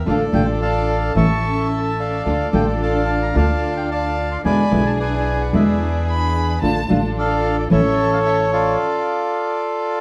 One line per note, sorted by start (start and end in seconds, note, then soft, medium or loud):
0.05 0.29 A1 medium
0.05 0.23 D3 medium
0.05 0.23 A3 medium
0.05 0.29 D4 soft
0.05 0.23 D4 medium
0.05 0.29 F4 soft
0.05 0.23 F4 medium
0.05 0.29 A4 soft
0.05 1.13 A4 soft
0.05 0.61 D5 soft
0.05 0.20 F5 medium
0.32 1.11 A1 medium
0.32 0.42 D3 medium
0.32 0.42 A3 medium
0.32 0.42 D4 medium
0.32 1.11 D4 medium
0.32 0.42 F4 medium
0.32 1.12 F4 medium
0.32 1.12 A4 medium
0.32 0.47 G5 medium
0.62 1.12 D5 medium
0.62 1.12 F5 medium
0.62 1.16 A5 medium
1.15 2.20 A1 medium
1.15 1.24 E3 medium
1.15 1.24 A3 medium
1.15 2.20 C#4 medium
1.15 1.25 C#4 medium
1.15 2.20 E4 medium
1.15 1.25 E4 medium
1.15 2.20 A4 medium
1.15 2.22 E5 medium
1.15 2.22 A5 medium
1.15 1.68 C#6 medium
2.00 3.04 A4 soft
2.00 2.81 D5 soft
2.00 2.50 F5 medium
2.25 2.49 D2 medium
2.25 2.42 D3 medium
2.25 2.42 A3 medium
2.25 2.49 D4 soft
2.25 2.43 D4 soft
2.25 2.49 F4 soft
2.25 2.43 F4 medium
2.25 2.49 A4 soft
2.52 3.31 A1 medium
2.52 2.62 D3 medium
2.52 2.62 A3 medium
2.52 3.31 D4 medium
2.52 2.62 D4 medium
2.52 3.31 F4 medium
2.52 2.62 F4 medium
2.52 3.31 A4 medium
2.52 2.67 G5 medium
2.83 3.35 D5 medium
2.83 3.35 F5 medium
2.83 3.24 A5 medium
3.22 3.36 A#5 medium
3.34 4.39 D2 medium
3.34 3.44 D3 medium
3.34 3.44 A3 medium
3.34 4.39 D4 medium
3.34 3.44 D4 medium
3.34 4.39 F4 medium
3.34 3.44 F4 medium
3.34 4.39 A4 medium
3.34 3.90 D5 medium
3.34 3.90 F5 medium
3.34 3.78 A5 medium
3.77 3.89 G5 medium
3.91 4.42 D5 medium
3.91 4.42 F5 medium
3.91 4.33 A5 medium
4.32 4.38 C6 medium
4.44 4.67 E2 medium
4.44 4.61 B2 medium
4.44 4.61 D3 medium
4.44 4.61 G#3 medium
4.44 4.62 B3 medium
4.44 4.67 D4 soft
4.44 4.67 E4 soft
4.44 4.62 E4 medium
4.44 4.67 G#4 medium
4.44 4.99 D5 medium
4.44 4.98 G#5 medium
4.44 4.87 B5 medium
4.71 5.49 B1 medium
4.71 4.80 B2 medium
4.71 4.80 D3 medium
4.71 4.81 G#3 medium
4.71 4.81 B3 medium
4.71 5.49 D4 medium
4.71 5.49 E4 medium
4.71 4.81 E4 medium
4.71 5.49 G#4 medium
4.87 4.92 A5 medium
5.00 5.54 B4 medium
5.00 6.04 D5 medium
5.00 5.41 G#5 medium
5.41 5.53 F#5 medium
5.53 6.57 E2 medium
5.53 5.62 B2 medium
5.53 5.62 D3 medium
5.53 5.62 G#3 medium
5.53 5.63 B3 medium
5.53 6.56 D4 medium
5.53 6.57 E4 medium
5.53 5.63 E4 medium
5.53 6.56 G#4 medium
5.53 6.59 G#4 medium
5.53 6.59 B4 medium
5.53 6.32 E5 medium
6.07 6.58 B5 medium
6.62 6.85 A1 medium
6.62 6.79 D3 soft
6.62 6.79 A3 medium
6.62 6.85 D4 soft
6.62 6.79 D4 medium
6.62 6.85 F4 soft
6.62 6.79 F4 medium
6.62 6.85 A4 medium
6.62 7.00 A5 medium
6.89 7.67 A1 medium
6.89 6.98 D3 medium
6.89 6.98 A3 medium
6.89 7.66 D4 medium
6.89 6.98 D4 medium
6.89 7.66 F4 medium
6.89 6.99 F4 medium
6.89 7.66 A4 medium
7.18 7.68 A4 medium
7.18 7.57 D5 medium
7.18 7.56 F5 medium
7.59 7.64 D5 medium
7.70 8.74 A1 medium
7.70 7.79 E3 medium
7.70 7.80 A3 medium
7.70 8.74 C#4 medium
7.70 7.80 C#4 medium
7.70 8.74 E4 medium
7.70 7.80 E4 medium
7.70 8.74 A4 medium
7.70 8.51 A4 medium
7.70 8.76 C#5 medium
7.70 8.10 E5 medium
8.13 8.19 F5 medium
8.26 8.38 E5 medium
8.53 10.01 F4 medium
8.53 10.01 A4 medium
8.53 10.01 D5 medium